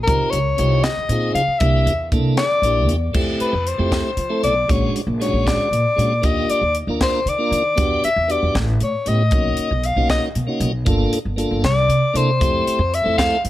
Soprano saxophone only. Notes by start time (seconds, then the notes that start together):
0.04 A#4
0.31 C#5
0.84 D#5
1.35 F5
1.59 E5
2.38 D5
3.41 B4
3.68 C5
4.44 D5
4.71 C#5
5.22 C#5
5.47 D5
6.25 D#5
6.50 D5
7.02 C5
7.29 D5
8.05 E5
8.32 D5
8.83 C#5
9.08 D#5
9.86 F5
10.10 D#5
11.65 D5
12.16 C5
12.95 E5
13.18 F5